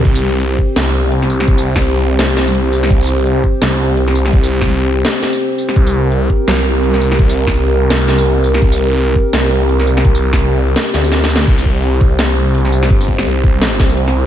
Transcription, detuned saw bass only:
0.05 C2
0.76 C2
1.48 C2
1.83 C2
2.19 C2
2.90 C2
3.62 C2
4.33 C2
4.69 C2
5.76 C2
6.48 C2
7.19 C2
7.55 C2
7.91 C2
8.62 C2
9.33 C2
10.05 C2
10.41 C2
10.94 D2
11.48 C2
12.19 C2
12.90 G1
13.26 C2
13.80 C2
14.15 C2

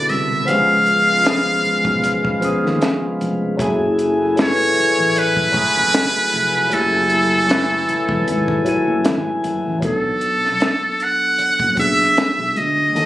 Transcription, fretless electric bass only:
0.10 C2
0.49 C#2
1.66 muted fretless electric bass stroke
1.85 B1
2.44 muted fretless electric bass stroke
2.64 D#2
3.21 F1
3.60 F#1
4.78 muted fretless electric bass stroke
4.98 A1
5.55 muted fretless electric bass stroke
5.77 F#1
6.33 F1
6.73 F#1
7.90 muted fretless electric bass stroke
8.10 E1
8.28 G#1
8.67 muted fretless electric bass stroke
8.88 F#1
9.06 G#1
9.45 F#1
9.66 A1
9.83 B1
11.39 muted fretless electric bass stroke
11.60 F#1
12.38 B1
12.57 D2
12.95 D#2

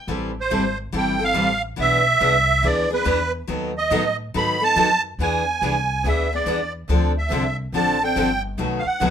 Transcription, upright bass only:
0.07 A1
0.51 G#1
0.93 G1
1.35 A1
1.79 B1
2.21 C2
2.63 D2
3.06 E2
3.48 D#2
3.91 A2
4.35 G#2
4.76 F#2
5.19 E2
5.62 C2
6.04 D2
6.46 E2
6.89 D2
7.31 C2
7.72 A1
8.16 G1
8.58 B1
8.85 muted upright bass stroke
9.01 C#2

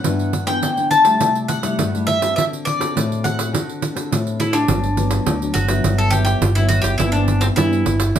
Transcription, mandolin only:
Already playing: F#5
0.47 G5
0.91 A5
1.49 F#5
2.07 E5
2.36 E5
2.65 D5
3.24 F#5
4.40 E4
4.53 D4
5.54 F#4
5.98 A4
6.11 G4
6.25 G4
6.55 E4
6.69 F#4
6.82 G4
6.98 E4
7.12 D4
7.41 C4
7.56 E4

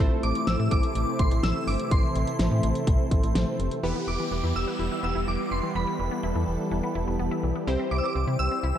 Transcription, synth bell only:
0.23 D6
0.47 E6
0.71 D6
1.19 C6
1.43 E6
1.68 D6
1.92 C6
4.08 D6
4.56 E6
5.04 E6
5.28 D6
5.52 C6
5.76 B5
7.91 D6
7.98 E6
8.05 D6
8.39 E6

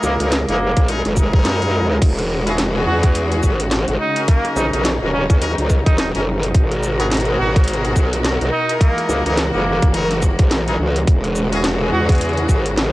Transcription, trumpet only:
0.04 A#3
0.21 A#3
0.48 A#3
2.87 F#4
3.03 F#4
4.00 D#4
4.28 A#3
4.56 D#4
4.73 D#4
5.13 C#4
5.30 C#4
5.86 D#4
5.98 D#4
7.39 F#4
7.56 F#4
8.52 D#4
8.81 A#3
9.09 A#3
9.25 A#3
9.53 A#3
11.93 F#4
12.09 F#4

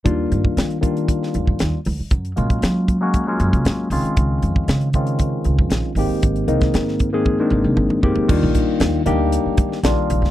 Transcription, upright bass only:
0.06 D#2
0.32 G2
0.57 D#3
1.35 D#2
1.47 G2
1.61 D#2
1.86 D2
2.00 muted upright bass stroke
2.11 F#2
2.38 A#2
2.63 F#3
3.40 F#2
3.53 C3
3.65 G#2
3.90 C#2
4.03 muted upright bass stroke
4.17 C#2
4.43 F2
4.68 C#3
5.45 C#2
5.58 F2
5.70 A#1
5.95 G#1
6.09 muted upright bass stroke
6.23 G#1
6.48 C2
6.74 G#2
7.51 G#1
7.64 C2
7.77 G#1
8.03 G1
8.16 muted upright bass stroke
8.29 D#2
8.43 A#1
8.80 D#2
9.06 D2
9.46 muted upright bass stroke
9.58 D#3
9.83 A#1
10.10 A#1
10.22 D2

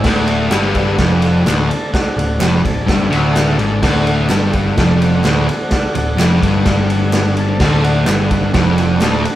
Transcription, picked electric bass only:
0.05 D1
0.51 G1
0.99 F1
1.46 D1
2.16 D1
2.41 F1
2.65 D1
2.89 G1
3.12 D1
3.60 G#1
3.83 D1
4.31 G1
4.78 F1
5.25 D1
5.96 D1
6.18 F1
6.43 G1
7.60 D1
8.09 G1
8.55 F1
9.03 D1

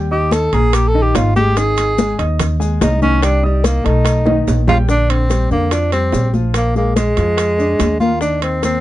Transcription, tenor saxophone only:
0.12 G4
0.33 A4
0.53 G#4
0.75 G4
0.88 A4
1.02 G4
1.16 F4
1.36 G4
1.58 G#4
2.83 D#4
3.02 C#4
3.23 D4
3.45 G3
3.66 A#3
3.85 D#4
4.69 F4
4.90 D4
5.10 C4
5.52 A#3
5.72 D4
5.93 C4
6.56 A#3
6.77 A#3
6.96 G#3
8.00 F4
8.21 D4
8.43 C4
8.65 C4

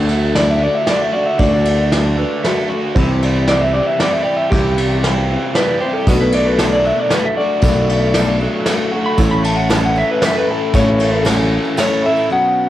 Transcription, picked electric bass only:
Already playing: D2
1.40 D2
2.96 C2
4.52 C2
6.07 B1
7.62 B1
9.18 A1
10.74 A1

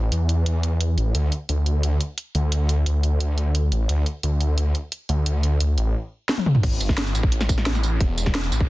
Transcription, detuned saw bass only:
Already playing: A1
0.12 E2
0.98 A1
1.15 D2
1.49 D2
2.35 D2
2.86 D2
3.72 A1
3.89 D2
4.23 D2
5.09 D2
5.61 D2
5.78 A1
6.63 A1
6.81 G1
7.15 A1
8.01 E1
8.52 A1

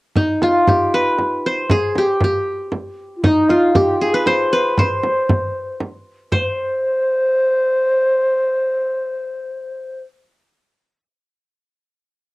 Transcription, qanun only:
0.16 D#4
0.43 F4
0.68 G4
0.94 B4
1.46 C5
1.71 G#4
1.98 G4
2.24 G4
3.24 D#4
3.50 F4
3.75 G4
4.01 G#4
4.14 B4
4.27 C5
4.53 B4
4.79 C5
6.32 C5

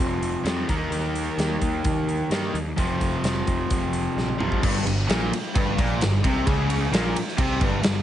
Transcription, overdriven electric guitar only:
Already playing: F2 C3 F3
0.44 F2 C3
0.48 F3
0.68 D#3 A#3 D#4
2.31 D#3 A#3 D#4
2.77 F2 C3 F3
4.39 F2 C3 F3
4.63 G2
4.87 G2
5.09 A#2
5.32 muted overdriven electric guitar stroke
5.55 G2
5.79 A#2
6.01 G2
6.24 C3
6.46 C#3
6.93 A#2
7.15 muted overdriven electric guitar stroke
7.38 C3
7.60 G2
7.83 G2

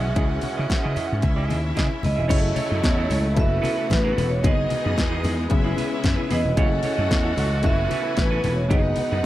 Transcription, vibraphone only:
Already playing: E5
2.05 D#5
3.40 E5
3.94 B4
4.29 C#5
4.48 D#5
6.33 D#5
7.66 E5
8.20 B4
8.55 C#5
8.73 D#5

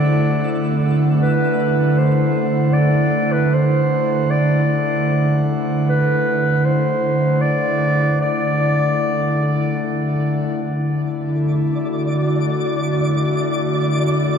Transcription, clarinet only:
Already playing: D5
1.22 B4
1.98 C5
2.73 D5
3.32 B4
3.54 C5
4.30 D5
5.89 B4
6.65 C5
7.41 D5
8.21 D5

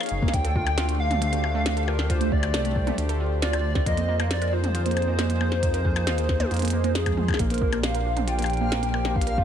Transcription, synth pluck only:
0.00 A#4
0.23 A#3
0.45 A4
0.56 F4
0.78 F4
0.89 A3
1.11 A3
1.22 A3
1.33 A3
1.44 A3
1.55 A3
1.77 A4
1.88 F4
2.10 F4
2.21 A3
2.43 A3
2.54 A3
2.65 A3
2.76 A3
2.87 A3
3.09 A4
3.20 F4
3.42 F4
3.53 A3
3.75 A3
3.86 A#3
3.97 A#3
4.08 A#3
4.19 A#3
4.42 A#4
4.53 F4
4.75 F4
4.86 A#3
5.08 A#3
5.19 A#3
5.30 A#3
5.41 A#3
5.52 A#3
5.74 A#4
5.85 F4
6.07 F4
6.18 A#3
6.40 A#3
6.51 A#3
6.62 A#3
6.73 A#3
6.84 A#3
7.06 G#3
7.17 F3
7.28 A#3
7.39 A#3
7.50 A#3
7.62 A#3
7.73 A#3
7.95 A#4
8.06 F4
8.17 D4
8.28 F4
8.39 A#3
8.61 A#3
8.72 A#3
8.83 A#3
8.94 A#3
9.05 A#3
9.27 A#4
9.38 F4

